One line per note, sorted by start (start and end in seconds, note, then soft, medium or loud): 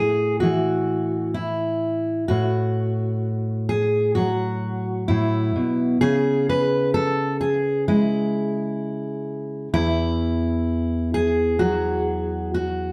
0.00 2.28 A2 medium
0.00 0.40 G#4 medium
0.40 2.24 E3 medium
0.40 1.34 F#4 medium
1.34 2.28 E4 medium
2.28 5.08 A2 medium
2.28 3.69 F#4 medium
3.69 4.15 G#4 medium
4.15 5.97 F#3 medium
4.15 5.08 F#4 medium
5.08 5.55 A2 medium
5.08 6.01 E4 medium
5.56 6.01 B2 medium
6.01 9.68 C#3 medium
6.01 6.48 G#4 medium
6.49 6.94 B4 medium
6.94 7.40 A4 medium
7.41 7.88 G#4 medium
7.88 9.68 G#3 medium
7.88 9.72 E4 medium
9.74 12.92 E2 medium
9.74 11.14 E4 loud
11.14 12.92 G#4 medium
11.59 12.92 F#3 medium
11.59 12.53 F#4 medium
12.54 12.92 F#4 medium